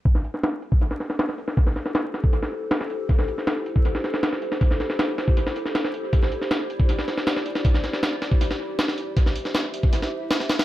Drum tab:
HH |o-o-o-o-o-o-o-o-|o-o-o-o-o---o-o-|o-o-o-o-o-o-o-o-|o-o-o-o-o-o-o-o-|
SD |-o-oo----ooooo-o|-oooo-o--o--oo--|-o-oo----ooooo-o|-oooo-o--o-ooo--|
BD |o------o--------|o------o--------|o------o--------|o------o--------|

HH |o-o-o-o-o-o-o-o-|o-o-o-o-o---o-o-|o-o-o-o-o---o-oo|
SD |-o-oo----ooooo-o|-oooo-o--o--oo--|-o-oo----o--oooo|
BD |o------o--------|o------o--------|o------o--------|